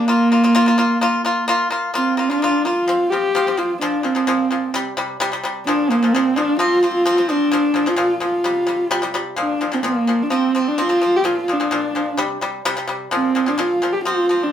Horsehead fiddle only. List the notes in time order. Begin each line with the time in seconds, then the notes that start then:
Already playing: A#3
1.95 C4
2.28 D4
2.64 F4
3.10 G4
3.58 F4
3.81 D4
4.04 C4
5.65 D4
5.90 A#3
6.12 C4
6.35 D4
6.59 F4
6.95 F4
7.30 D4
7.88 F4
8.24 F4
9.39 D4
9.73 C4
9.86 A#3
10.22 D4
10.33 C4
10.67 D4
10.81 F4
11.16 G4
11.25 F4
11.52 D4
13.13 C4
13.48 D4
13.59 F4
13.92 G4
14.04 F4
14.43 D4